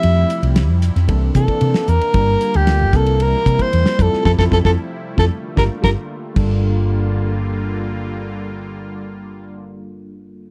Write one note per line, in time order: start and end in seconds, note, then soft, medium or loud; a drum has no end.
0.00 0.23 F2 medium
0.00 2.13 C3 medium
0.00 0.61 F3 medium
0.00 1.08 F3 medium
0.00 1.08 G3 medium
0.00 0.61 A3 medium
0.00 0.62 C4 medium
0.00 0.62 E4 medium
0.00 1.06 E4 medium
0.00 0.62 G4 medium
0.00 0.56 E5 medium
0.00 ride medium
0.30 hi-hat pedal medium
0.30 ride medium
0.42 0.70 C2 medium
0.42 ride medium
0.56 snare medium
0.56 ride medium
0.70 0.89 F2 medium
0.82 snare soft
0.82 hi-hat pedal medium
0.82 ride medium
0.96 1.06 F2 medium
0.96 snare soft
0.96 ride medium
1.08 1.29 C2 medium
1.08 1.29 E3 medium
1.08 2.13 E3 medium
1.08 1.29 A#3 medium
1.08 3.96 A#3 medium
1.08 1.30 C4 medium
1.08 1.30 D4 medium
1.08 2.14 D4 medium
1.08 1.30 A4 medium
1.08 kick medium
1.08 ride medium
1.35 1.45 C3 medium
1.35 1.93 E3 medium
1.35 1.93 A#3 medium
1.35 1.93 C4 medium
1.35 1.93 D4 medium
1.35 1.91 A4 medium
1.35 1.93 A4 medium
1.35 kick medium
1.35 hi-hat pedal medium
1.35 ride medium
1.48 kick medium
1.48 ride medium
1.61 1.71 C3 medium
1.61 ride medium
1.74 snare loud
1.88 1.98 E2 medium
1.88 2.58 A#4 medium
1.88 hi-hat pedal medium
1.88 ride medium
2.01 muted fretless electric bass stroke soft
2.01 ride medium
2.13 2.34 G1 medium
2.13 2.93 D3 medium
2.13 2.90 G3 medium
2.13 2.93 G3 medium
2.13 2.91 A#3 medium
2.13 2.91 D4 medium
2.13 2.91 F4 medium
2.13 2.93 F4 medium
2.13 2.91 A#4 medium
2.13 kick loud
2.13 ride medium
2.41 hi-hat pedal medium
2.41 ride medium
2.54 2.83 D2 medium
2.54 2.97 G4 medium
2.54 ride medium
2.67 snare loud
2.67 ride medium
2.81 2.91 G1 medium
2.93 3.33 C2 loud
2.93 3.98 C3 medium
2.93 3.99 E3 medium
2.93 3.35 G3 medium
2.93 6.33 G3 medium
2.93 3.36 A#3 medium
2.93 3.36 C4 medium
2.93 3.36 E4 medium
2.93 3.98 E4 medium
2.93 3.24 A4 medium
2.93 3.36 A#4 medium
2.93 kick loud
2.93 snare soft
2.93 hi-hat pedal medium
2.93 ride medium
3.06 ride medium
3.20 3.63 A#4 medium
3.20 ride medium
3.46 3.56 C3 medium
3.46 3.97 G3 medium
3.46 3.99 A#3 medium
3.46 3.97 C4 medium
3.46 3.97 E4 medium
3.46 3.99 A#4 medium
3.46 kick medium
3.46 hi-hat pedal medium
3.46 ride medium
3.59 4.04 C5 medium
3.59 kick medium
3.59 ride medium
3.73 3.83 E2 medium
3.73 ride medium
3.86 snare loud
3.98 4.09 F2 medium
3.98 5.29 C3 medium
3.98 5.30 F3 medium
3.98 4.25 G3 medium
3.98 6.34 A3 medium
3.98 4.23 C4 medium
3.98 4.24 E4 medium
3.98 5.29 E4 medium
3.98 4.23 F4 medium
3.98 4.25 A4 medium
3.98 kick medium
3.98 hi-hat pedal medium
3.98 ride medium
4.02 4.25 A4 medium
4.13 muted fretless electric bass stroke soft
4.13 snare soft
4.24 4.35 F2 medium
4.24 4.33 C4 medium
4.24 4.34 E4 medium
4.24 4.33 F4 medium
4.24 4.32 A4 medium
4.24 kick medium
4.24 snare medium
4.38 4.48 F2 medium
4.38 4.47 C4 medium
4.38 4.47 E4 medium
4.38 4.47 F4 medium
4.38 4.45 A4 medium
4.38 kick medium
4.38 snare medium
4.51 4.62 F2 medium
4.51 4.60 C4 medium
4.51 4.60 E4 medium
4.51 4.59 F4 medium
4.51 4.59 A4 medium
4.51 kick medium
4.51 snare medium
4.63 4.75 F2 medium
4.63 4.72 C4 medium
4.63 4.73 E4 medium
4.63 4.73 F4 medium
4.63 4.72 A4 medium
4.63 kick medium
4.63 snare medium
5.17 5.28 F2 medium
5.17 5.26 C4 medium
5.17 5.26 E4 medium
5.17 5.25 F4 medium
5.17 5.25 A4 medium
5.17 kick medium
5.17 snare medium
5.30 6.35 D3 medium
5.30 6.35 A#3 medium
5.30 6.35 F4 medium
5.56 5.67 G1 medium
5.56 5.65 D4 medium
5.56 5.65 F4 medium
5.56 5.65 G4 medium
5.56 5.64 A#4 medium
5.56 kick medium
5.56 snare medium
5.82 5.93 G1 medium
5.82 5.91 D4 medium
5.82 5.91 F4 medium
5.82 5.91 G4 medium
5.82 5.90 A#4 medium
5.82 kick medium
5.82 snare medium
6.34 10.51 G1 medium
6.34 10.51 D3 medium
6.34 10.51 G3 medium
6.34 10.51 A#3 medium
6.34 10.51 D4 medium
6.34 10.51 F4 medium
6.34 kick loud
6.34 crash medium
6.38 10.51 A4 medium